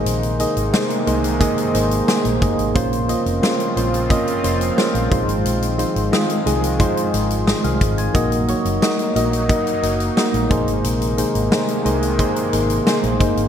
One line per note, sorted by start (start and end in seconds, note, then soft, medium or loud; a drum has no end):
0.00 2.73 C3 medium
0.00 2.73 D#3 medium
0.00 2.73 G#3 medium
0.00 0.26 A#3 medium
0.00 5.08 A#3 medium
0.00 0.26 D#4 medium
0.00 2.72 D#4 medium
0.00 0.26 G#4 medium
0.00 0.27 C5 medium
0.06 0.44 A#1 medium
0.06 closed hi-hat medium
0.23 closed hi-hat soft
0.39 0.66 A#3 medium
0.39 0.67 D#4 medium
0.39 0.67 G#4 medium
0.39 0.67 D#5 medium
0.39 closed hi-hat medium
0.56 0.69 G#1 medium
0.56 closed hi-hat soft
0.73 1.00 A#3 medium
0.73 1.00 D#4 medium
0.73 1.00 G#4 medium
0.73 1.01 C5 medium
0.73 snare loud
0.90 closed hi-hat soft
1.06 1.45 C2 medium
1.06 1.34 A#3 medium
1.06 1.34 D#4 medium
1.06 1.34 G#4 medium
1.06 1.34 C5 medium
1.06 closed hi-hat medium
1.24 closed hi-hat soft
1.40 1.67 A#3 medium
1.40 1.67 D#4 medium
1.40 1.68 G#4 medium
1.40 1.68 D#5 loud
1.40 kick medium
1.40 closed hi-hat medium
1.58 closed hi-hat soft
1.73 2.00 G#1 medium
1.73 2.01 A#3 medium
1.73 2.01 D#4 medium
1.73 2.01 G#4 medium
1.73 2.01 C5 medium
1.73 closed hi-hat medium
1.91 closed hi-hat soft
2.07 2.35 A#3 medium
2.07 2.35 D#4 medium
2.07 2.35 G#4 medium
2.07 2.35 C5 medium
2.07 snare loud
2.25 2.38 A#1 medium
2.25 closed hi-hat soft
2.41 2.55 F#1 medium
2.41 2.68 A#3 medium
2.41 2.69 D#4 medium
2.41 2.69 G#4 medium
2.41 2.69 D#5 medium
2.41 kick medium
2.41 closed hi-hat medium
2.59 2.71 G#1 medium
2.59 closed hi-hat soft
2.75 3.14 A#1 medium
2.75 5.09 C#3 medium
2.75 8.11 F3 medium
2.75 3.02 A#3 medium
2.75 8.11 C4 medium
2.75 3.02 C#4 medium
2.75 3.02 F4 medium
2.75 8.11 F4 medium
2.75 3.03 C5 loud
2.75 kick loud
2.75 closed hi-hat medium
2.93 closed hi-hat soft
3.08 3.36 A#3 medium
3.08 3.36 C#4 medium
3.08 3.36 F4 medium
3.08 3.36 D#5 medium
3.08 closed hi-hat medium
3.26 3.39 F1 medium
3.26 closed hi-hat soft
3.42 3.69 A#3 medium
3.42 3.70 C#4 medium
3.42 3.70 F4 medium
3.42 3.70 C5 medium
3.42 snare loud
3.60 closed hi-hat soft
3.76 4.14 A#1 medium
3.76 4.03 A#3 medium
3.76 4.03 C#4 medium
3.76 4.04 F4 medium
3.76 4.04 C5 medium
3.76 closed hi-hat medium
3.94 closed hi-hat soft
4.09 4.37 A#3 loud
4.09 4.37 C#4 medium
4.09 4.37 F4 medium
4.09 4.37 D#5 loud
4.09 kick medium
4.09 closed hi-hat medium
4.27 closed hi-hat soft
4.43 4.69 F1 medium
4.43 4.71 A#3 medium
4.43 4.71 C#4 medium
4.43 4.71 F4 medium
4.43 4.71 C5 medium
4.43 closed hi-hat medium
4.61 closed hi-hat soft
4.77 5.04 A#3 medium
4.77 5.04 C#4 medium
4.77 5.05 F4 medium
4.77 5.05 C5 medium
4.77 snare medium
4.94 5.07 A#1 medium
4.94 closed hi-hat soft
5.10 5.24 A#1 medium
5.10 8.12 D#3 medium
5.10 5.65 G#3 medium
5.10 8.12 G#3 medium
5.10 5.65 D#4 medium
5.10 5.65 F4 medium
5.10 5.66 C5 medium
5.10 kick loud
5.10 closed hi-hat medium
5.28 5.41 G#1 medium
5.28 closed hi-hat soft
5.45 5.83 A#1 medium
5.45 closed hi-hat medium
5.62 closed hi-hat soft
5.78 6.05 G#3 medium
5.78 6.06 D#4 medium
5.78 6.06 F4 medium
5.78 6.06 C5 medium
5.78 closed hi-hat medium
5.96 6.08 G#1 medium
5.96 closed hi-hat soft
6.12 6.39 G#3 medium
6.12 6.39 D#4 medium
6.12 6.39 F4 medium
6.12 6.40 D#5 medium
6.12 snare loud
6.30 closed hi-hat soft
6.46 6.84 C2 medium
6.46 6.73 G#3 medium
6.46 6.73 D#4 medium
6.46 6.73 F4 medium
6.46 6.73 G#4 medium
6.46 closed hi-hat medium
6.64 closed hi-hat medium
6.79 7.07 G#3 medium
6.79 7.07 D#4 medium
6.79 7.07 F4 medium
6.79 7.07 C5 loud
6.79 kick medium
6.79 closed hi-hat medium
6.97 closed hi-hat soft
7.14 7.52 G#1 medium
7.14 closed hi-hat medium
7.30 closed hi-hat soft
7.47 7.63 D#5 medium
7.47 snare medium
7.64 7.77 C2 medium
7.64 7.97 G#4 medium
7.64 7.96 F5 medium
7.64 closed hi-hat soft
7.81 8.06 G#1 medium
7.81 kick medium
7.81 closed hi-hat medium
7.98 8.30 C5 soft
7.98 8.30 G#5 medium
7.98 closed hi-hat soft
8.14 8.53 A#1 loud
8.14 10.48 F#3 medium
8.14 8.41 A#3 loud
8.14 13.48 A#3 medium
8.14 8.42 D#4 medium
8.14 13.48 D#4 medium
8.14 8.42 F#4 medium
8.14 8.42 D#5 loud
8.14 kick loud
8.14 closed hi-hat medium
8.32 closed hi-hat medium
8.48 8.75 A#3 medium
8.48 8.75 D#4 medium
8.48 8.76 F#4 medium
8.48 8.76 C#5 medium
8.48 closed hi-hat medium
8.65 8.78 F#1 medium
8.65 closed hi-hat soft
8.82 9.09 A#3 medium
8.82 9.09 D#4 medium
8.82 9.09 F#4 medium
8.82 9.09 D#5 medium
8.82 snare loud
8.99 closed hi-hat soft
9.15 9.54 A#1 medium
9.15 9.43 A#3 medium
9.15 9.43 D#4 medium
9.15 9.43 F#4 medium
9.15 9.43 D#5 medium
9.15 closed hi-hat medium
9.33 closed hi-hat soft
9.49 9.76 A#3 loud
9.49 9.76 D#4 medium
9.49 9.77 F#4 medium
9.49 9.77 D#5 loud
9.49 kick medium
9.49 closed hi-hat medium
9.67 closed hi-hat soft
9.82 10.09 F#1 medium
9.82 10.10 A#3 medium
9.82 10.10 D#4 medium
9.82 10.10 F#4 medium
9.82 10.11 D#5 medium
9.82 closed hi-hat medium
10.00 closed hi-hat soft
10.16 10.44 A#3 medium
10.16 10.44 D#4 medium
10.16 10.44 F#4 medium
10.16 10.44 D#5 medium
10.16 snare loud
10.34 10.47 A#1 medium
10.34 closed hi-hat soft
10.50 10.63 A#1 medium
10.50 13.48 C3 medium
10.50 13.48 D#3 medium
10.50 13.48 G#3 medium
10.50 11.04 A#3 medium
10.50 11.05 D#4 medium
10.50 11.05 G#4 medium
10.50 11.05 C5 medium
10.50 kick medium
10.50 closed hi-hat medium
10.68 10.80 G#1 medium
10.68 closed hi-hat soft
10.84 11.22 A#1 medium
10.84 closed hi-hat medium
11.02 closed hi-hat soft
11.17 11.45 A#3 medium
11.17 11.45 D#4 medium
11.17 11.45 G#4 medium
11.17 11.45 C5 medium
11.17 closed hi-hat medium
11.35 11.48 G#1 medium
11.35 closed hi-hat soft
11.51 11.79 A#3 medium
11.51 11.79 D#4 medium
11.51 11.79 G#4 medium
11.51 11.79 C5 medium
11.51 snare loud
11.68 closed hi-hat soft
11.85 12.23 C2 medium
11.85 12.12 A#3 medium
11.85 12.12 D#4 medium
11.85 12.12 G#4 medium
11.85 12.13 C5 medium
11.85 closed hi-hat medium
12.03 closed hi-hat soft
12.19 12.46 A#3 medium
12.19 12.46 D#4 medium
12.19 12.46 G#4 medium
12.19 12.47 C5 loud
12.19 kick medium
12.19 closed hi-hat medium
12.36 closed hi-hat medium
12.52 12.78 G#1 medium
12.52 12.80 A#3 medium
12.52 12.80 D#4 medium
12.52 12.80 G#4 medium
12.52 12.80 C5 medium
12.52 closed hi-hat medium
12.70 closed hi-hat soft
12.86 13.13 A#3 medium
12.86 13.14 D#4 medium
12.86 13.14 G#4 medium
12.86 13.14 C5 medium
12.86 snare loud
13.03 13.16 A#1 medium
13.03 closed hi-hat soft
13.20 13.33 F#1 medium
13.20 13.47 A#3 medium
13.20 13.47 D#4 medium
13.20 13.47 G#4 medium
13.20 13.48 C5 medium
13.20 kick medium
13.20 closed hi-hat medium
13.37 13.48 G#1 medium
13.37 closed hi-hat soft